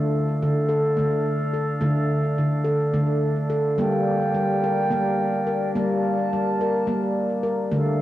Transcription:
Already playing: D3 A3 D4 A4 F5
0.43 D3
0.69 A4
0.97 D3 A3
1.54 A4
1.81 D3 A3
2.38 D3
2.64 A4
2.94 D3 A3
3.50 A4
3.77 G3 A#3 A#4 G5
4.34 G3
4.64 A#4
4.90 G3 A#3
5.47 A#4
5.74 G3 A#3 A5
6.33 G3
6.61 A#4
6.87 G3 A#3
7.43 A#4
7.72 D3 A3 A4 F5

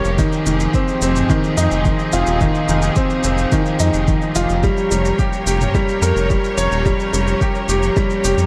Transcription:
Already playing: F3 G3 C#4 G4 A#4 C#5
0.05 F1, shaker
0.18 D#3 C4 D#4 G#4, kick, shaker
0.33 shaker
0.46 F1 D#3, shaker
0.60 shaker
0.74 C4, kick, shaker
0.88 shaker
1.01 F1 C4, shaker
1.16 mid tom, shaker
1.30 D#3, kick, shaker
1.44 shaker
1.57 F2 D#4, shaker
1.71 F1, shaker
1.85 D#3, kick, shaker
1.99 shaker
2.13 F1 F4, shaker
2.27 D#1, shaker
2.41 D#3, kick, shaker
2.55 shaker
2.68 F1 D#3, shaker
2.82 shaker
2.96 C4, kick, shaker
3.10 shaker
3.24 F1 C4, shaker
3.38 shaker
3.52 D#3, kick, shaker
3.66 shaker
3.80 F2 D#4, shaker
3.94 F1, shaker
4.08 D#3, kick, shaker
4.22 shaker
4.35 F1 F4, shaker
4.49 F1, shaker
4.63 G3 C#4 G4 A#4 C#5, kick, shaker
4.77 shaker
4.91 F1 G3, shaker
5.05 shaker
5.19 G4, kick, shaker
5.33 shaker
5.46 F1 G4, shaker
5.61 mid tom, shaker
5.75 G3, kick, shaker
5.89 shaker
6.02 F2 A#4, shaker
6.16 F1, shaker
6.30 G3, kick, shaker
6.44 shaker
6.58 F1 C#5, shaker
6.71 D#1, shaker
6.86 G3, kick, shaker
7.00 shaker
7.13 F1 G3, shaker
7.28 shaker
7.41 G4, kick, shaker
7.55 shaker
7.68 F1 G4, shaker
7.83 shaker
7.97 G3, kick, shaker
8.10 shaker
8.24 F1 G4, shaker
8.38 F2, shaker

